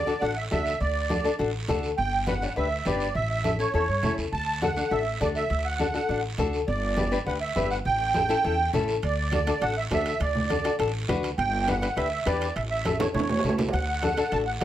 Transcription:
Already playing: D2 D5
0.06 D4 F#4 A4, short guiro
0.21 A1 D4 F#4 A4 F#5, high conga, long guiro
0.37 E5
0.51 D2 D4 F#4 A4 E5, high conga, short guiro
0.66 short guiro
0.80 D2 D5, high conga, long guiro
1.09 D4 F#4 A4, high conga, short guiro
1.24 D4 F#4 A4, short guiro
1.39 A1 D4 F#4 A4, high conga, long guiro
1.68 D2 D4 F#4 A4, high conga, low conga, short guiro
1.83 short guiro
1.98 G1 G5, high conga, long guiro
2.27 D4 G4 B4 F#5, high conga, short guiro
2.42 D4 G4 C#5, short guiro
2.56 D2 D4 G4 B4 E5, high conga, long guiro
2.85 G1 D4 G4 B4 D5, high conga, short guiro
3.00 short guiro
3.15 A1 E5, high conga, long guiro
3.30 E5
3.44 C#4 E4 A4, high conga, short guiro
3.59 C#4 E4 A4 C#5, short guiro
3.74 E2 C#4 E4 A4 C#5, high conga, long guiro
3.88 G2
4.03 F#2 C#4 E4 A4, high conga, low conga, short guiro
4.18 E2, short guiro
4.32 D2 A5, high conga, long guiro
4.62 D4 F#4 A4 F#5, high conga, short guiro
4.76 D4 F#4 A4, short guiro
4.91 A1 D4 F#4 A4 E5, high conga, long guiro
5.20 D2 D4 F#4 A4 D5, high conga, short guiro
5.35 E5, short guiro
5.50 D2, high conga, long guiro
5.65 F#5
5.79 D4 F#4 A4, high conga, short guiro
5.94 D4 F#4 A4 F#5, short guiro
6.09 A1 D4 F#4 A4, high conga, long guiro
6.38 D2 D4 F#4 A4, high conga, low conga, short guiro
6.53 short guiro
6.68 G1 D5, high conga, long guiro
6.97 D4 G4 B4, high conga, short guiro
7.11 D4 G4 B4, short guiro
7.26 D2 D4 G4 B4 F#5, high conga, long guiro
7.41 E5
7.55 G1 D4 G4 B4, high conga, short guiro
7.71 F#5, short guiro
7.85 A1 G5, high conga, long guiro
8.14 C#4 E4 A4, high conga, short guiro
8.29 C#4 E4 A4, short guiro
8.44 E2 C#4 E4 A4, high conga, long guiro
8.73 A1 C#4 E4 A4, high conga, low conga, short guiro
8.88 short guiro
9.02 D2 D5, high conga, high timbale, long guiro
9.32 D4 F#4 A4, high conga, high timbale, short guiro
9.47 D4 F#4 A4, high timbale, short guiro
9.61 A1 D4 F#4 A4 F#5, high conga, high timbale, long guiro
9.77 E5
9.91 D2 D4 F#4 A4 E5, high conga, high timbale, low timbale, short guiro
10.06 high timbale, short guiro
10.20 D2 D5, high conga, high timbale, long guiro
10.35 low conga
10.49 D4 F#4 A4, high conga, high timbale, short guiro
10.64 D4 F#4 A4, high timbale, short guiro
10.79 A1 D4 F#4 A4, high conga, high timbale, long guiro
11.08 D2 D4 F#4 B4, high conga, low conga, high timbale, short guiro
11.23 high timbale, short guiro
11.38 G1 G5, high conga, high timbale, long guiro
11.67 D4 G4 B4 F#5, high conga, high timbale, short guiro
11.81 D4 G4 B4, high timbale, short guiro
11.96 D2 D4 G4 B4 E5, high conga, high timbale, long guiro
12.25 E2 D4 G4 B4 D5, high conga, high timbale, short guiro
12.41 high timbale, short guiro
12.55 A1 E5, high conga, high timbale, long guiro
12.70 E5
12.85 C#4 E4 A4, high conga, high timbale, short guiro
12.99 C#4 E4 A4 C#5, high conga, high timbale, short guiro
13.14 E2 C#4 E4 A4 C#5, low conga, long guiro
13.20 high timbale
13.29 low conga, low timbale
13.39 low timbale
13.43 C#2 C#4 E4 A4, low conga, short guiro
13.49 low timbale
13.58 low conga, low timbale, short guiro
13.68 F#5, low timbale
13.73 D2, high timbale, long guiro
14.02 D4 F#4 A4, high conga, high timbale, short guiro
14.17 D4 F#4 A4, high timbale, short guiro
14.31 A1 D4 F#4 A4 A5, high conga, high timbale, long guiro
14.45 F#5
14.60 D2 D4 F#5, high conga, short guiro

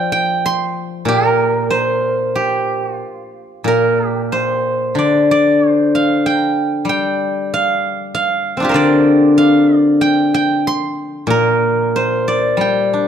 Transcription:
Already playing: F3 D5 G5
0.12 G5
0.46 C6
1.05 A#2 A#4
1.70 C5
2.35 G4
2.95 F4
3.64 A#2 A#4
4.09 G4
4.32 C5
4.95 D3 D5
5.31 D5
5.69 C5
5.95 F5
6.26 G5
6.85 G3
6.89 G5
7.54 F5
8.15 F5
8.57 C4 D4
8.62 F4 G4
8.69 A#4 C5
8.74 D3 D5
9.38 F5
9.78 D5
10.01 G5
10.34 G5
10.67 C6
11.27 A#2 A#4
11.96 C5
12.28 D5
12.57 G3 G5
12.93 D4

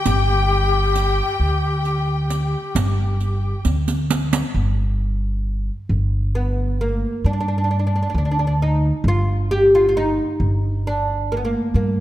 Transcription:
Already playing: G4 G5
0.06 G1, riq
0.95 riq
1.40 D2
1.85 riq
2.30 riq
2.75 G1, riq
3.20 riq
3.65 D2, riq
3.88 riq
4.10 riq
4.33 riq
4.54 G1
5.89 G1
6.35 B3
6.81 A#3
7.24 G2 D4
7.33 D4
7.40 D4
7.48 D4
7.58 D4
7.64 D4
7.71 D4
7.79 D4
7.87 D4
7.96 D4
8.03 D4
8.10 D4
8.14 D2 D4
8.25 D4
8.31 D4
8.39 D4
8.47 D4
8.62 D#4
9.04 G1
9.08 F4
9.51 G4
9.75 F4
9.89 F4
9.97 D#4
10.40 G1
10.87 D4
11.32 A#3
11.37 B3
11.45 A#3
11.74 G2 A#3

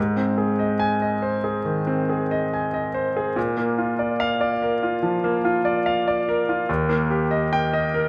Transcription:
Already playing: G#2
0.16 C4
0.38 G#4
0.59 D#5
0.79 G#5
1.02 D#5
1.22 C5
1.44 G#4
1.65 D#3
1.87 C4
2.09 G#4
2.31 D#5
2.54 G#5
2.74 D#5
2.94 C5
3.17 G#4
3.36 A#2
3.57 A#3
3.78 F4
3.99 D5
4.20 F5
4.41 D5
4.62 A#4
4.83 F4
5.03 F3
5.24 A#3
5.45 F4
5.65 D5
5.86 F5
6.08 D5
6.29 A#4
6.49 F4
6.69 D#2
6.89 A#3
7.11 G4
7.31 D#5
7.53 G5
7.73 D#5
7.94 A#4

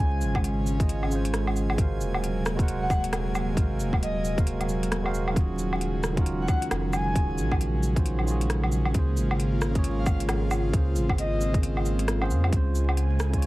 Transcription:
Already playing: C#3 G#3 C5 C#5 G#5
0.00 C#2 G#3 C#4 F4 C5
0.21 G#1, cabasa
0.35 kick, low woodblock
0.44 closed hi-hat
0.67 cabasa
0.78 C#3 G#3 F4, kick, closed hi-hat
0.82 D#5
0.89 closed hi-hat
1.03 low woodblock
1.07 C#3 G#3
1.12 F4 C5, cabasa
1.25 closed hi-hat
1.34 cross-stick, closed hi-hat
1.47 low woodblock
1.56 cabasa
1.70 low woodblock
1.74 G#3 F#4
1.78 G#1 C3 F#3 A#3 A#4 C5 F5, kick, closed hi-hat
2.01 D#1, cabasa
2.15 low woodblock
2.24 closed hi-hat
2.46 cross-stick, cabasa
2.55 G#3 F#4 A#4, kick
2.60 C5 F#5, closed hi-hat
2.68 closed hi-hat
2.81 F#5
2.90 kick, cabasa, low woodblock
3.04 closed hi-hat
3.13 cross-stick, closed hi-hat, low woodblock
3.35 cabasa, low woodblock
3.53 G#1 G#3 F#4, kick
3.57 A#4 C5, closed hi-hat
3.62 F5
3.79 D#1, cabasa
3.93 kick, low woodblock
4.03 D#5, closed hi-hat
4.25 cabasa
4.36 G#3 F#4 A#4 C5, kick, closed hi-hat
4.40 F5
4.47 closed hi-hat
4.61 closed hi-hat, low woodblock
4.69 cabasa
4.83 closed hi-hat
4.92 cross-stick, closed hi-hat
5.03 G#3 F#4 A#4 C5, low woodblock
5.07 F5
5.15 cabasa
5.28 low woodblock
5.32 D#1 D#3 C#4, kick
5.37 C#3 G#3 F4 F#4, closed hi-hat
5.41 G#4
5.59 cabasa
5.73 low woodblock
5.81 closed hi-hat
6.04 cross-stick, cabasa
6.13 D#3 C#4
6.17 F4 F#4, kick, closed hi-hat
6.21 A#4
6.26 closed hi-hat
6.40 F#5
6.48 kick, cabasa, low woodblock
6.62 closed hi-hat
6.71 F1, cross-stick, closed hi-hat, low woodblock
6.93 G#5, cabasa, low woodblock
7.12 D#1 D#3 C#4, kick, closed hi-hat
7.17 F4 F#4 G#4
7.38 A#1, cabasa
7.52 kick, low woodblock
7.61 closed hi-hat
7.83 cabasa
7.95 D#3 C#4 F4 F#4, kick, closed hi-hat
7.99 C5
8.06 closed hi-hat
8.19 low woodblock
8.24 D#3 C#4 F4, cabasa
8.30 F#4 G#4
8.41 closed hi-hat
8.50 cross-stick, closed hi-hat
8.64 low woodblock
8.72 cabasa
8.85 low woodblock
8.90 C#3 A#3 F4, closed hi-hat
8.95 C#2 G#4, kick
8.99 C5
9.17 G#1, cabasa
9.31 low woodblock
9.40 closed hi-hat
9.62 cross-stick, cabasa
9.71 C#3 A#3
9.75 G#4 C#5, kick, closed hi-hat
9.84 closed hi-hat
9.98 F5
10.06 kick, cabasa, low woodblock
10.20 closed hi-hat
10.29 cross-stick, closed hi-hat, low woodblock
10.51 cabasa, low woodblock
10.69 C#3 A#3 C4
10.74 C#2 G#4 C5, kick, closed hi-hat
10.96 G#1, cabasa
11.09 kick, low woodblock
11.18 D#5, closed hi-hat
11.41 cabasa
11.51 C#3 A#3 G#4 D#5, kick, closed hi-hat
11.63 closed hi-hat
11.77 low woodblock
11.86 cabasa
11.99 closed hi-hat
12.08 cross-stick, closed hi-hat
12.20 C#3 A#3 G#4 C5, low woodblock
12.30 F2, cabasa
12.44 low woodblock
12.48 C#3 G#3
12.53 C#2 G#3 F4 G#5, kick, closed hi-hat
12.57 C5
12.75 cabasa
12.89 low woodblock
12.97 closed hi-hat
13.20 cross-stick, cabasa
13.30 C#3 G#3, kick, closed hi-hat
13.35 F4 C#5
13.42 closed hi-hat

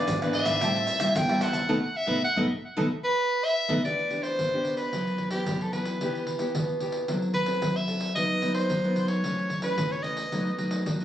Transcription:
Already playing: E3 B3 D4 G#4 B4 D5
0.07 G#2, pandeiro, shaker, surdo
0.22 E3 B3 D4 G#4 B4 D5, pandeiro, tamborim, shaker
0.33 E4 G#4 B4 D5 E5, pandeiro
0.46 G#2 G#4 B4 D5, pandeiro, tamborim, shaker
0.61 A2 G3 C4 E4 G4 C5 E5 A5, pandeiro, tamborim, shaker, surdo
0.75 C5 E5 A5, pandeiro, shaker
0.87 pandeiro, shaker
1.00 G3 A3 C4 E4 C5 E5 A5, pandeiro, tamborim, shaker, surdo
1.15 E2 E3 G5, muted cavaquinho stroke, pandeiro, shaker, surdo
1.29 G3 C4 E4 C5 E5 A5, pandeiro, tamborim, shaker, surdo
1.40 G4 C5 E5 F#5 A5, pandeiro, tamborim, shaker
1.53 C5 E5 A5, pandeiro, shaker, surdo
1.69 B1 A3 B3 D#4 A4 B4 D#5, surdo
1.97 E5
2.07 B1 A3 B3 D#4 A4 B4 D#5, surdo
2.24 F#5
2.36 B1 A3 B3 D#4 A4 B4 D#5, surdo
2.77 B1 A3 B3 D#4 A4 B4 D#5, surdo
3.04 B4
3.45 E5
3.68 B1 A3 B3 D#4 A4 B4 D#5, surdo
3.84 E3 B3 D4 G4 D5, pandeiro, surdo
3.99 pandeiro
4.11 B3 D4 G4, pandeiro
4.23 C5, pandeiro
4.39 B2, pandeiro, surdo
4.53 B3 D4 G4, pandeiro
4.65 pandeiro
4.77 B4, pandeiro
4.93 F#2 E3 B3 E4, pandeiro, surdo
5.07 pandeiro
5.18 pandeiro, surdo
5.31 E3 B3 E4 G4, pandeiro
5.46 F#2, pandeiro, surdo
5.61 A4, pandeiro
5.73 E3 B3 E4 B4, pandeiro
5.85 pandeiro
6.01 E3 B3 E4 G4, pandeiro, surdo
6.15 pandeiro
6.27 pandeiro
6.39 B3 E4 G4, pandeiro
6.55 B2, pandeiro, surdo
6.69 pandeiro
6.80 B3 E4 G4, pandeiro
6.92 pandeiro
7.08 F#3 C4 E4 A4, pandeiro, surdo
7.22 pandeiro
7.34 B4, pandeiro, surdo
7.46 C4 E4 A4, pandeiro
7.62 F#3, pandeiro, surdo
7.76 E5, pandeiro
7.88 C4 E4 A4, pandeiro
8.00 pandeiro
8.15 B2 F#3 B3 D#4 D#5, pandeiro, surdo
8.30 pandeiro
8.42 F#3 B3 D#4, pandeiro
8.54 C5, pandeiro
8.70 F#2, pandeiro, surdo
8.84 F#3 B3 D#4, pandeiro
8.96 pandeiro
9.08 C#5, pandeiro
9.24 F#2 E3 A3 C#4, pandeiro, surdo
9.38 pandeiro
9.50 pandeiro, surdo
9.62 E3 A3 C#4 B4, pandeiro
9.78 C#3, pandeiro, surdo
9.92 C#5, pandeiro
10.03 E3 A3 C#4 D#5, pandeiro
10.17 pandeiro
10.32 B2 F#3 A3 D#4, pandeiro, surdo
10.47 pandeiro
10.58 F#3 A3 D#4, pandeiro
10.71 pandeiro
10.86 F#2, pandeiro, surdo
11.00 F#3 A3, pandeiro

